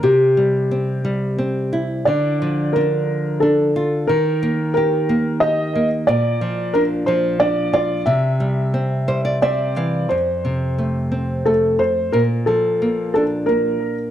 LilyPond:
<<
  \new Staff \with { instrumentName = "Felt piano" } { \time 3/4 \key f \major \tempo 4 = 89 g'2~ g'8 r8 | d''4 bes'4 a'4 | bes'4 bes'4 ees''8. r16 | d''4 bes'8 c''8 d''8 d''8 |
e''2 d''4 | c''2 a'8 c''8 | bes'8 a'4 a'8 bes'8. r16 | }
  \new Staff \with { instrumentName = "Nylon-string guitar" } { \time 3/4 \key f \major << { r2. | r2. | r2. | r2. |
r4. c''16 d''16 e''8 f''8 | r2. | r2. | } \\ { c8 g8 c'8 g8 c'8 e'8 | d8 f8 d'4 d'8 f'8 | ees8 bes8 g'8 bes8 g'8 bes8 | bes,8 f8 d'8 f8 d'8 f'8 |
c8 g8 c'8 g8 c'8 e8 | f,8 c8 a8 c'8 a4 | bes,8 f8 bes8 d'8 bes4 | } >> }
>>